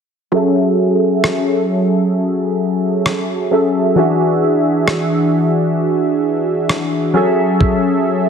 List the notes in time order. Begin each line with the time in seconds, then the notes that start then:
0.32 F#3 C#4 G#4 A4 E5
1.24 cross-stick
3.06 cross-stick
3.51 F#3 C#4 G#4 A4 E5
3.95 E3 D4 F#4 G#4 E5
4.88 cross-stick
6.69 cross-stick
7.13 F#3 C#4 G#4 A4 E5
7.61 kick